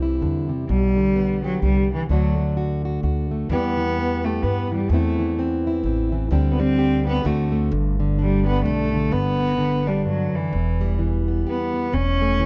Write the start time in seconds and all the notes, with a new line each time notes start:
Already playing: C2 E3 G3 C4
0.02 E4
0.21 E2 D3
0.49 C3
0.69 B1 B2 G3
0.96 D3
1.16 B3
1.44 F#3 G4
1.62 C2 G3 B3
1.91 D3 E3
2.09 D2 D3 F#3 A3 D4 F#4
2.38 A3
2.57 F#4
2.85 F#4
3.03 D2 F#4
3.31 A3
3.49 E2 E3 G3 B3 G4
3.77 E3
3.99 B3
4.24 A3 G4
4.43 G2 B3
4.72 E3 G3
4.89 E2 E3 A3 B3 C4
4.94 E4
5.19 E3
5.39 C4
5.67 E4
5.84 A1 C4
6.12 E3
6.31 D2 D3 G3 C4 G4
6.52 B3
6.60 G3 C4
6.79 G4
7.07 B3 G4
7.24 D2 D3 A3 C4 F#4
7.52 A3
7.71 G1 G2
8.00 D3
8.19 G3 D4
8.46 B3 G4
8.65 B1 A3 D4
8.93 D3
9.12 G1 G2 B3
9.40 B3
9.58 D3
9.87 G3 D4
10.05 G2 F#3
10.32 F#2 E3
10.52 E1 E2
10.81 G3
10.99 E3
11.28 B3
11.47 B3 G4
11.74 B3
11.92 E1 E2 C#4
12.22 A3
12.39 E3